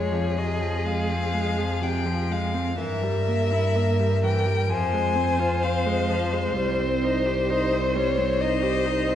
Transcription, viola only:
Already playing: G#3
0.12 F3
0.37 C3
0.61 F3
0.86 G#3
1.11 C4
1.34 G#3
1.58 F3
1.81 C3
2.06 F3
2.31 G#3
2.54 C4
2.78 E3
3.03 G3
3.27 A#3
3.52 E4
3.76 A#3
4.00 G3
4.23 E3
4.46 G3
4.69 F3
4.93 G#3
5.15 C4
5.39 F4
5.64 C4
5.86 G#3
6.10 F3
6.33 G#3
6.56 G3
6.79 C4
7.03 D#4
7.26 G4
7.50 D#4
7.72 C4
7.95 G3
8.18 C4
8.41 D#4
8.63 G4
8.85 D#4
9.08 C4

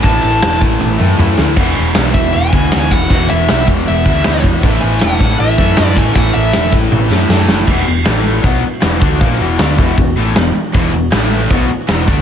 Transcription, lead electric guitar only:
0.03 A5
0.23 A5
2.14 E5
2.33 G#5
2.91 F#5
3.30 E5
3.88 E5
4.81 G#5
5.00 F#5
5.40 E5
5.86 D5
5.98 G#5
6.15 F#5
6.34 E5

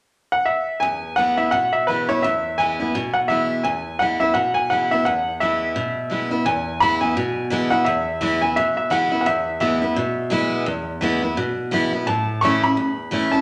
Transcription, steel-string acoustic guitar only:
0.82 E2
1.17 E3 G#3 B3 E4
1.37 B3 E4
1.52 B2
1.88 E3 G#3 B3 E4
2.09 B3 E4
2.24 E2
2.59 E3 G#3 B3 E4
2.80 B3 E4
2.95 B2
3.29 E3 G#3 B3 E4
3.65 E2
4.00 E3 G#3 B3 E4
4.20 B3 E4
4.35 B2
4.70 E3 G#3 B3 E4
4.91 B3 E4
5.06 E2
5.41 E3 G#3 B3 E4
5.76 B2
6.10 E3 G#3 B3 E4
6.31 B3 E4
6.46 E2
6.80 E3 G#3 B3 E4
7.01 B3 E4
7.17 B2
7.50 E3 G#3 B3 E4
7.71 B3 E4
7.86 E2
8.21 E3 G#3 B3 E4
8.42 B3 E4
8.57 B2
8.90 E3 G#3 B3 E4
9.12 B3 E4
9.26 E2
9.60 E3 G#3 B3 E4
9.82 B3 E4
9.96 B2
10.30 E3 G#3 B3 E4
10.66 E2
11.01 E3 G#3 B3 E4
11.22 B3 E4
11.37 B2
11.71 E3 G#3 B3 E4
11.93 B3 E4
12.07 A2
12.42 E3 A3 C#4 E4
12.63 C#4 E4
12.77 E2
13.11 E3 A3 C#4 E4
13.32 C#4 E4

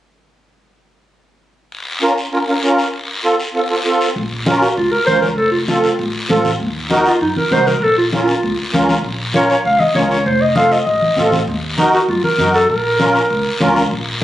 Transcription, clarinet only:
4.61 F#4
4.77 F4
4.91 A#4
5.07 C5
5.22 A#4
5.37 A4
5.52 F4
5.68 F4
7.06 F4
7.22 D#4
7.37 A#4
7.52 C5
7.67 A#4
7.83 A4
7.98 F4
8.13 F4
9.35 C#5
9.50 C#5
9.65 F5
9.80 D#5
9.95 C#5
10.10 C#5
10.26 C5
10.41 D#5
10.57 F5
10.72 D#5
10.86 D#5
11.94 F#4
12.09 F4
12.24 A#4
12.54 A4
12.69 A#4

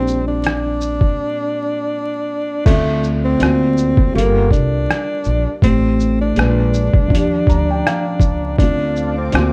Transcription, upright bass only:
Already playing: A#1
2.66 D2
3.41 D2
3.98 D2
4.15 G1
4.51 C2
5.26 A#1
5.63 A1
6.37 A#1
6.94 B1
7.11 D#2
7.48 D2
8.20 C#2
8.59 D2
9.34 D2

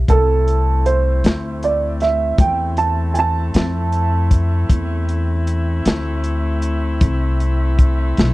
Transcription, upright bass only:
0.09 C2
1.24 D2
2.38 E2
3.55 F2
4.70 E2
5.86 D2
7.02 C2
8.18 B1

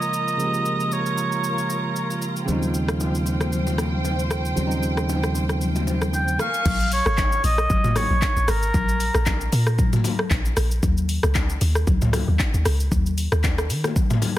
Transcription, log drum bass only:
6.66 A#1
7.06 G#1
7.44 A#1
7.70 G#1
8.10 A#1
8.36 A#1
8.48 G#1
8.74 A#1
9.15 A#1
9.53 A#2
10.31 A#1
10.57 A#1
10.83 D#2
11.24 C#2
11.61 D#2
11.87 C#2
12.28 D#2
12.54 D#2
12.66 C#2
12.92 D#2
13.32 D#2
13.70 D#3

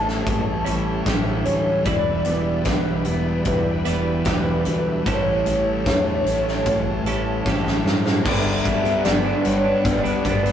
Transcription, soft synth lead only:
Already playing: A5
1.45 C#5
1.85 D5
2.65 B4
3.47 B4
5.09 C#5
8.28 E5
9.04 D5
9.47 C#5
9.85 D5

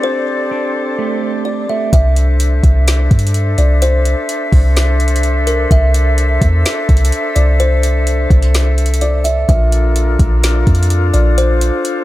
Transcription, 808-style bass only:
1.93 C2
2.64 C2
3.11 G2
3.58 C2
4.52 C2
5.71 C2
6.42 E2
6.89 C2
7.36 C2
8.30 C2
9.49 A#1
10.19 A#1
10.67 F2
11.14 A#1

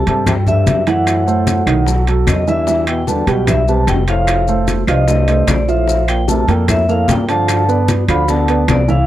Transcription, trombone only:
0.07 C3
0.27 C3
0.48 G2
0.87 A2
2.27 F#2
2.48 G2
2.88 B2
3.08 D3
3.28 B2
3.48 G2
3.68 C3
3.88 B2
4.08 A2
4.88 G2
5.07 G2
5.48 F2
5.67 A2
6.08 A#2
6.28 C3
6.48 A#2
6.68 A2
6.89 A2
7.09 A#2
7.28 D3
8.08 D3
8.28 D3
8.68 F2
8.88 A2

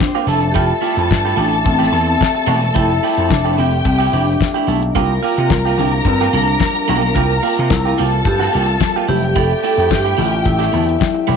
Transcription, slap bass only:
0.27 F1
0.97 F2
1.11 G2
1.37 A1
1.66 A1
1.92 E2
2.47 E1
2.76 F1
3.18 F2
3.31 F1
3.58 F1
3.85 C2
4.13 F1
4.67 B1
4.96 C2
5.38 C3
5.50 C2
5.78 C2
6.05 G2
6.33 C2
6.89 B1
7.16 C2
7.59 C3
7.70 C2
8.00 C2
8.25 G2
8.55 C2
9.08 F1
9.78 F2
9.91 G2
10.18 A1
10.45 A1
10.73 E2
11.29 E1

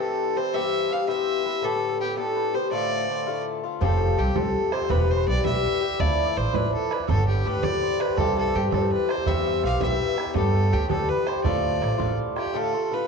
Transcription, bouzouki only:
0.00 G2 E3 C4 G4
0.36 E3 C4 G4
0.54 G2 E3 B3 G4
0.90 G2 E3 B3 G4
1.07 G2 E3 B3 G4
1.44 E3 B3 G4
1.62 A2 D3 B3 G4
1.99 A2 D3 B3 G4
2.17 A2 D3 B3 G4
2.53 D3 B3 G4
2.71 A2 D3 A3 F4
3.09 A2 D3 A3 F4
3.27 A2 D3 A3 F4
3.64 D3 A3 F4
3.81 A2 F3 C4 G4
4.17 A2 F3 C4 G4
4.36 A2 F3 C4 G4
4.72 F3 C4 G4
4.89 G2 E3 B3 G4
5.26 G2 E3 B3 G4
5.44 G2 E3 B3 G4
5.81 E3 B3 G4
5.99 A2 F3 D4 E4
6.36 A2 F3 D4 E4
6.54 A2 F3 D4 E4
6.90 F3 D4 E4
7.08 A2 D3 B3 G4
7.44 A2 D3 B3 G4
7.63 A2 D3 B3 G4
8.00 D3 B3 G4
8.18 G2 E3 C4 G4
8.54 G2 E3 C4 G4
8.72 G2 E3 C4 G4
9.07 E3 C4 G4
9.26 G2 E3 B3 G4
9.63 G2 E3 B3 G4
9.81 G2 E3 B3 G4
10.17 E3 B3 G4
10.34 A2 D3 B3 G4
10.72 A2 D3 B3 G4
10.89 A2 D3 B3 G4
11.27 D3 B3 G4
11.44 A2 D3 A3 F4
11.81 A2 D3 A3 F4
11.98 A2 D3 A3 F4
12.36 D3 A3 F4
12.54 A2 D3 A3 F4
12.74 D3 A3 F4
12.91 A2 D3 A3 F4

